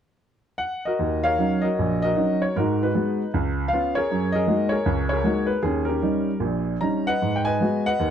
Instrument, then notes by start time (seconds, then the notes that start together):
grand piano
0.58 F#5
0.85 F#4 A#4 D#5
0.99 D#2
1.23 A#4 C#5 F5
1.38 F#3 C#4 D#4
1.61 F#4 A#4 D#5
1.79 A#1
2.02 F#4 A#4 D#5
2.16 F#3 C#4 D#4
2.42 C#5
2.56 G#2 D#4 F#4 A#4
2.83 D#4 F#4 B4
2.94 G#3 B3 F#4
3.34 C#2
3.68 F5
3.73 B3 C#4 F4
3.95 G#4 A#4 C#5
4.11 F#2
4.32 G#4 A#4 D#5
4.47 G#3 A#3 D#4 F#4
4.69 G#4 A#4 C#5
4.86 C#2
5.09 G#4 A#4 C#5
5.24 G#3 A#3 D#4 F#4
5.46 B4
5.63 D#2 C#4 G#4
5.85 C#4 G4 A#4
6.02 G3 C#4 D#4
6.40 A#1 A#2
6.81 G3 C#4 D#4 A#5
7.07 B4 D#5 F#5
7.22 G#2
7.36 G5
7.45 B4 D#5 G#5
7.60 G#3 B3 F#4
7.86 B4 D#5 F#5
7.99 D#2